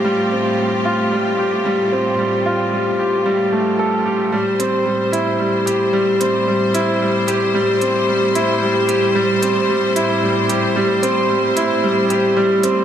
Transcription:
<<
  \new Staff \with { instrumentName = "String section" } { \time 4/4 \key a \minor \tempo 4 = 112 <a f' g'>1~ | <a f' g'>1 | <a, g c''>1~ | <a, g c''>1~ |
<a, g c''>1~ | <a, g c''>1 | }
  \new Staff \with { instrumentName = "Upright piano" } { \time 4/4 \key a \minor g8 c'8 g8 f'8 g8 g'8 g8 c'8 | g8 f'8 g8 g'8 g8 a8 a'8 g'8 | g8 c'8 g8 e'8 g8 g'8 g8 c'8 | g8 e'8 g8 g'8 g8 c'8 g8 e'8 |
g8 g'8 g8 c'8 g8 e'8 g8 g'8 | g8 c'8 g8 e'8 g8 g'8 g8 c'8 | }
  \new Staff \with { instrumentName = "Cello section" } { \clef bass \time 4/4 \key a \minor a,1~ | a,1 | r1 | r1 |
r1 | r1 | }
  \new DrumStaff \with { instrumentName = "Drums" } \drummode { \time 4/4 r4 r4 r4 r4 | r4 r4 r4 r4 | r8 hh8 r8 hh8 r8 hh8 r8 hh8 | r8 hh8 r8 hh8 r8 hh8 r8 hh8 |
r8 hh8 r8 hh8 r8 hh8 r8 hh8 | r8 hh8 r8 hh8 r8 hh8 r8 hh8 | }
>>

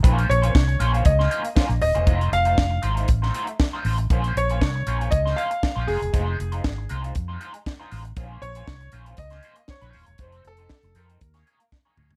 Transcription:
<<
  \new Staff \with { instrumentName = "Grand piano" } { \time 4/4 \key bes \minor \tempo 4 = 118 r8 des''4. ees''4. ees''8~ | ees''8 f''4 r2 r8 | r8 des''4. ees''8 f''4 aes'8~ | aes'4. r2 r8 |
r8 des''4 r8 ees''4 des''4 | c''8 a'4 bes'4. r4 | }
  \new Staff \with { instrumentName = "Clean electric guitar" } { \time 4/4 \key bes \minor <bes des' f' c''>8 r16 <bes des' f' c''>16 r8 <bes des' f' c''>16 <bes des' f' c''>16 r16 <bes des' f' c''>16 <bes des' f' c''>16 r16 <bes des' f' c''>16 r8 <bes des' f' c''>16 | <a ees' f' c''>8 r16 <a ees' f' c''>16 r8 <a ees' f' c''>16 <a ees' f' c''>16 r16 <a ees' f' c''>16 <a ees' f' c''>16 r8 <a ees' f' c''>16 <a ees' f' c''>16 r16 | <bes des' f' c''>8 r16 <bes des' f' c''>16 r8 <bes des' f' c''>16 <bes des' f' c''>16 r16 <bes des' f' c''>16 <bes des' f' c''>16 r8 <bes des' f' c''>16 <aes ees' f' c''>16 r16 | <aes ees' f' c''>8 r16 <aes ees' f' c''>16 r8 <aes ees' f' c''>16 <aes ees' f' c''>16 r16 <aes ees' f' c''>16 <aes ees' f' c''>16 r8 <aes ees' f' c''>16 <aes ees' f' c''>16 r16 |
<bes des' f' c''>8 r16 <bes des' f' c''>16 r8 <bes des' f' c''>16 <bes des' f' c''>16 r16 <bes des' f' c''>16 <bes des' f' c''>16 r8 <bes des' f' c''>16 <bes des' f' c''>16 r16 | <c' ees' a' c''>8 r16 <c' ees' a' c''>16 r8 <c' ees' a' c''>16 <c' ees' a' c''>16 r16 <bes ees' aes' des''>16 <bes ees' aes' des''>16 r8 <bes ees' aes' des''>16 <bes ees' aes' des''>16 r16 | }
  \new Staff \with { instrumentName = "Fingered electric bass" } { \clef bass \time 4/4 \key bes \minor bes,,8 bes,,8 c,8 bes,,8 des,8 r8. bes,,16 ees,,16 e,,16 | f,,8 f,,8 f,,8 aes,,8 a,,8 r4 a,,8 | bes,,8 bes,,8 c,8 bes,,8 des,8 r8. bes,,16 f,,16 e,,16 | f,,8 f,,8 aes,,8 c,8 f,8 r4 a,,8 |
bes,,8 bes,,8 c,8 bes,,8 des,8 r8. bes,,16 ees,,16 e,,16 | f,,8 f,,8 r16 f,,16 f,8 ees,8 r4 d,8 | }
  \new DrumStaff \with { instrumentName = "Drums" } \drummode { \time 4/4 <hh bd>16 hh16 hh16 hh16 <bd sn>16 hh16 hh16 hh16 <hh bd>16 sn16 hh16 hh16 <bd sn>16 hh16 hho16 hh16 | <hh bd>16 hh16 hh16 hh16 <bd sn>8 hh16 hh16 <hh bd>16 sn16 hh16 hh16 <bd sn>8 hho16 hh16 | <hh bd>16 hh16 hh16 hh16 <bd sn>8 hh16 hh16 <hh bd>16 sn16 hh16 hh16 <bd sn>8 hho16 hh16 | <hh bd>8 hh16 hh16 <bd sn>8 hh16 hh16 <hh bd>8 hh16 hh16 <bd sn>8 hho16 hh16 |
<hh bd>8 hh16 hh16 <bd sn>16 hh16 hh16 hh16 <hh bd>16 <hh sn>16 hh16 hh16 <bd sn>16 hh16 hho16 hh16 | <hh bd>16 hh16 hh16 hh16 <bd sn>16 hh16 hh16 hh16 <hh bd>16 <hh sn>16 hh16 hh16 <bd sn>8 toml16 tomfh16 | }
>>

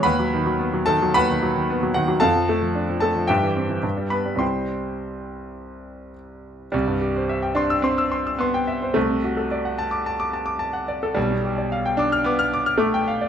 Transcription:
\new Staff \with { instrumentName = "Grand piano" } { \time 4/4 \key b \mixolydian \tempo 4 = 109 << { <b' fis'' b''>4. <a' a''>8 <b' fis'' b''>4. <fis' fis''>8 | \key c \major <a' f'' a''>4. <a' a''>8 <g' e'' g''>4. <b' b''>8 | <c'' g'' c'''>2. r4 | g4. d'8 c'4 b4 |
a1 | g4. d'8 b4 a4 | } \\ { dis,16 fis16 dis16 fis16 b16 fis16 dis16 fis16 dis,16 dis16 fis16 dis16 b16 fis16 dis16 fis16 | f,16 f16 a16 f16 d'16 f16 a16 f16 g,16 e16 c'16 e16 g,16 g16 b16 g16 | <c, g c' e'>1 | c,16 g,16 g'16 c''16 e''16 g''16 c'''16 e'''16 c'''16 e'''16 c'''16 e'''16 c'''16 g''16 e''16 c''16 |
c,16 c16 fis'16 a'16 d''16 fis''16 a''16 d'''16 a''16 d'''16 a''16 d'''16 a''16 fis''16 d''16 a'16 | b,,16 b,16 g'16 d''16 f''16 g''16 d'''16 f'''16 d'''16 f'''16 d'''16 f'''16 d'''16 g''16 f''16 d''16 | } >> }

